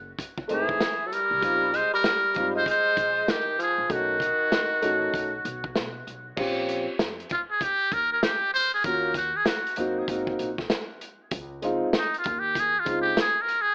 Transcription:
Already playing: upright bass F#1
0.19 kick, closed hi-hat
0.38 kick
0.48 upright bass G#1, tenor saxophone E3, grand piano A3 C4 D#4 G#4, closed hi-hat
0.53 muted trumpet G#4
0.69 kick
0.80 snare, closed hi-hat
1.06 tenor saxophone F#3, muted trumpet A4
1.11 tenor saxophone G3, muted trumpet A#4, closed hi-hat
1.31 upright bass C2
1.42 upright bass C#2, grand piano G3 C4 D#4 F4, kick, closed hi-hat
1.74 tenor saxophone G#3, muted trumpet C5, closed hi-hat
1.94 tenor saxophone G3, muted trumpet A#4
2.04 snare, closed hi-hat
2.34 upright bass G#1, grand piano G3 C4 D#4 F4, kick, closed hi-hat
2.55 tenor saxophone G#3, muted trumpet C5
2.66 tenor saxophone G#3, kick, closed hi-hat
2.70 muted trumpet C5
2.97 upright bass A#1, kick, closed hi-hat
3.28 tenor saxophone D#3, muted trumpet G4, snare, closed hi-hat
3.59 tenor saxophone F3, muted trumpet G#4, closed hi-hat
3.78 upright bass A#1
3.89 upright bass B1, tenor saxophone D#3, grand piano A3 C#4 D#4 F#4, muted trumpet F#4, kick, closed hi-hat
4.20 kick, closed hi-hat
4.52 snare, closed hi-hat
4.81 upright bass A1, grand piano A3 C#4 D#4 F#4, closed hi-hat
5.14 upright bass B1, kick, closed hi-hat
5.45 upright bass B1, closed hi-hat
5.64 kick
5.76 upright bass B2, snare, closed hi-hat
6.07 upright bass B1, closed hi-hat
6.37 upright bass A#1, grand piano C4 C#4 F4 G4, kick, crash
6.69 closed hi-hat
6.99 upright bass F2, snare, closed hi-hat
7.20 closed hi-hat
7.29 muted trumpet F4, kick, closed hi-hat
7.51 muted trumpet G#4
7.61 muted trumpet G4, kick, closed hi-hat
7.92 upright bass D#2, muted trumpet A#4, kick, closed hi-hat
8.12 muted trumpet A#4
8.23 muted trumpet G4, snare, closed hi-hat
8.53 muted trumpet C5, open hi-hat
8.74 muted trumpet G#4
8.84 upright bass D#2, grand piano A#3 C#4 F4 F#4, muted trumpet A#4, kick, closed hi-hat
9.14 muted trumpet F#4, kick, closed hi-hat
9.36 muted trumpet G#4
9.46 muted trumpet F#4, snare, closed hi-hat
9.67 closed hi-hat
9.76 upright bass F#2, grand piano A#3 C4 D#4, closed hi-hat
9.80 grand piano F#4
10.08 upright bass G#1, grand piano A#3 C4 D#4 F#4, kick, closed hi-hat
10.27 kick
10.39 upright bass A#1, closed hi-hat
10.58 kick, snare
10.70 snare, closed hi-hat
11.01 closed hi-hat
11.31 upright bass C#2, kick, closed hi-hat
11.62 grand piano G#3 C4 D#4 F4, closed hi-hat
11.93 snare, closed hi-hat
11.98 muted trumpet D#4
12.14 muted trumpet F4, closed hi-hat
12.24 upright bass D#2, kick, closed hi-hat
12.39 muted trumpet G4
12.55 kick, closed hi-hat
12.60 muted trumpet G#4
12.80 muted trumpet F4
12.85 upright bass C#2, grand piano G#3 C4 D#4 F4, kick, closed hi-hat
13.01 muted trumpet G4
13.17 muted trumpet G#4, snare, closed hi-hat
13.42 muted trumpet A#4
13.49 closed hi-hat
13.61 muted trumpet G#4

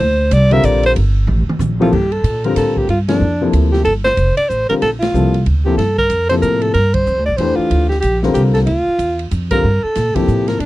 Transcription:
Already playing: alto saxophone C5
0.00 upright bass D2
0.31 upright bass C2, alto saxophone D5, hi-hat pedal, ride
0.50 grand piano D3 G3 C4 F4 A#4, alto saxophone E5, ride
0.64 upright bass A#1, alto saxophone D5, hi-hat pedal, ride
0.83 alto saxophone C5, ride
0.96 upright bass G1, ride
1.27 upright bass A1, mid tom
1.48 muted upright bass stroke, mid tom
1.59 upright bass A#1, hi-hat pedal, mid tom
1.80 grand piano C3 F3 A#3 E4 A4, alto saxophone F4, mid tom
1.92 upright bass G2, alto saxophone G4, kick, crash
2.12 alto saxophone A4, ride
2.24 upright bass A#2, hi-hat pedal, ride
2.44 grand piano D3 G3 C4 F4 A#4, alto saxophone A#4, ride
2.56 upright bass A2, alto saxophone A4, snare, hi-hat pedal, ride
2.77 alto saxophone G4, kick
2.88 upright bass G2, alto saxophone F4, ride
3.08 grand piano C3 F3 A#3 E4 A4, alto saxophone D4, snare, ride
3.21 upright bass F2
3.41 grand piano C3 F3 A#3 E4 A4
3.53 upright bass D2, hi-hat pedal, ride
3.72 alto saxophone G4, snare
3.85 upright bass G1, alto saxophone A4, ride
4.04 alto saxophone C5, snare
4.17 upright bass F1, hi-hat pedal, ride
4.37 alto saxophone D5, muted upright bass stroke, ride
4.49 upright bass A1, alto saxophone C5, hi-hat pedal
4.69 grand piano D3 G3 C4 F4 A#4, alto saxophone A#4, muted upright bass stroke, ride
4.82 upright bass A#1, alto saxophone A4, snare, ride
5.00 alto saxophone F4, snare, ride
5.14 upright bass C2, grand piano C3 F3 A#3 E4 A4, hi-hat pedal
5.34 ride
5.46 upright bass D2, ride
5.65 grand piano C3 F3 A#3 E4 A4, alto saxophone G4
5.77 upright bass G2, alto saxophone A4, snare, ride
5.98 alto saxophone A#4, kick
6.09 upright bass F2, hi-hat pedal, ride
6.29 grand piano C3 F3 A#3 E4 A4, alto saxophone C5, ride
6.42 upright bass A2, alto saxophone A#4, hi-hat pedal
6.62 alto saxophone A4, ride
6.74 upright bass G2, alto saxophone A#4, ride
6.94 alto saxophone C5, kick, ride
7.06 upright bass F2, hi-hat pedal
7.17 upright bass D2
7.26 upright bass A#1, alto saxophone D5
7.37 upright bass E2, grand piano E3 A3 D4 G4 C5, alto saxophone C5, ride
7.56 alto saxophone F4, muted upright bass stroke
7.70 upright bass D2, ride
7.89 alto saxophone G4, snare
8.01 upright bass A#1, alto saxophone G4, hi-hat pedal, ride
8.23 grand piano D3 G3 C4 F4 A#4, snare
8.34 upright bass C2, alto saxophone G4, hi-hat pedal, ride
8.54 alto saxophone A4, snare, ride
8.66 upright bass D2, alto saxophone F4, ride
8.87 muted upright bass stroke
8.98 upright bass E2, hi-hat pedal, ride
9.19 ride
9.31 upright bass F2, hi-hat pedal, ride
9.51 grand piano D3 G3 C4 F4 A#4, alto saxophone A#4, kick, ride
9.64 upright bass G2
9.84 alto saxophone A4, muted upright bass stroke
9.95 upright bass A#2, snare, hi-hat pedal, ride
10.15 grand piano C3 F3 A#3 E4 A4, alto saxophone G4, muted upright bass stroke, kick, ride
10.28 upright bass A2, hi-hat pedal
10.48 alto saxophone A#4, snare, ride
10.60 upright bass G2, alto saxophone D4, ride

